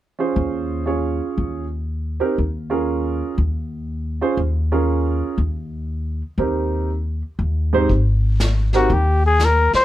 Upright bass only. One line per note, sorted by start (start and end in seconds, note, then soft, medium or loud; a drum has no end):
0.36 1.19 D#2 medium
1.38 2.20 D#2 medium
2.38 3.21 D#2 medium
3.38 4.21 D#2 medium
4.37 5.21 D#2 medium
5.38 6.21 D#2 medium
6.38 7.21 D#2 medium
7.39 7.86 D#2 medium
7.90 8.86 G#1 medium
8.90 9.69 D#2 medium
9.74 muted upright bass stroke soft